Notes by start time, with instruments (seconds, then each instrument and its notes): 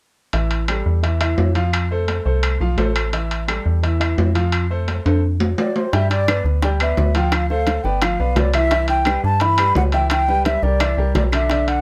0.33 fm bass A1, upright piano E3 E4 E5, high timbale
0.51 high timbale
0.68 upright piano G3 G4 A4, high timbale, low timbale, claves
0.86 fm bass E2
1.03 upright piano E3 E4 E5, high timbale
1.21 upright piano E3 E4 E5, high timbale, claves
1.38 fm bass F2, low timbale
1.55 upright piano F3 F4 F5, high timbale
1.73 high timbale, claves
1.91 upright piano A3 A4 C5
2.08 high timbale, low timbale
2.25 fm bass C2, upright piano A3 A4 C5
2.43 high timbale, claves
2.60 fm bass B1, upright piano F3 F4 F5
2.77 fm bass A1, upright piano A3 A4 C5, high timbale, low timbale
2.96 high timbale, claves
3.13 upright piano E3 E4 E5, high timbale
3.31 high timbale
3.48 upright piano G3 G4 A4, high timbale, low timbale, claves
3.66 fm bass E2
3.83 upright piano E3 E4 E5, high timbale
4.00 upright piano E3 E4 E5, high timbale, claves
4.18 fm bass F2, low timbale
4.35 upright piano F3 F4 F5, high timbale
4.52 high timbale, claves
4.70 upright piano A3 A4 C5
4.88 high timbale, low timbale
5.05 fm bass F2, upright piano A3 A4 C5, high timbale
5.40 low timbale
5.58 flute D5, low timbale
5.76 flute C5, low timbale
5.93 fm bass G2, upright piano G3 G4 G5, flute E5, high bongo, high timbale
6.10 flute D5, high bongo, high timbale
6.28 upright piano B3 B4 D5, high bongo, high timbale, low timbale, claves
6.45 fm bass D2, high bongo
6.62 upright piano G3 G4 G5, flute D5, high bongo, high timbale
6.80 upright piano B3 B4 D5, flute E5, high timbale, claves
6.97 fm bass D2, high bongo, low bongo, low timbale
7.14 upright piano F3 F4 F5, flute G5, high bongo, high timbale
7.32 flute F5, high bongo, high timbale, claves
7.50 upright piano A3 A4 C5, flute F5, high bongo
7.67 high bongo, high timbale, low timbale
7.84 fm bass G1, upright piano B3 B4 D5, flute G5, high bongo
8.02 upright piano F3 F4 F5, flute F5, high bongo, high timbale, claves
8.20 fm bass B1, upright piano B3 B4 D5
8.36 fm bass C2, flute D5, high bongo, low bongo, high timbale, low timbale
8.54 upright piano E3 E4 E5, flute E5, high bongo, high timbale, claves
8.71 upright piano E3 E4 E5, high bongo, high timbale
8.88 flute G5, high bongo, high timbale
9.05 upright piano G3 G4 B4, high bongo, high timbale, low timbale, claves
9.24 fm bass G2, flute A5, high bongo
9.40 upright piano E3 E4 E5, flute B5, high bongo, high timbale
9.58 upright piano G3 G4 B4, high timbale, claves
9.75 fm bass C#2, flute F#5, high bongo, low bongo, low timbale
9.92 upright piano E3 E4 E5, flute G5, high bongo, high timbale
10.10 flute G5, high bongo, high timbale, claves
10.28 upright piano G3 G4 B4, high bongo
10.45 flute E5, high bongo, high timbale, low timbale
10.63 fm bass C2, upright piano G3 G4 A#4, flute D5, high bongo
10.80 upright piano E3 E4 E5, high bongo, high timbale, claves
10.97 fm bass C2, upright piano G3 G4 A#4
11.15 fm bass B1, flute D5, high bongo, low bongo, high timbale, low timbale
11.32 upright piano D3 D4 D5, flute E5, high bongo, high timbale, claves
11.50 upright piano D3 D4 D5, high bongo, high timbale
11.68 flute F#5, high bongo, high timbale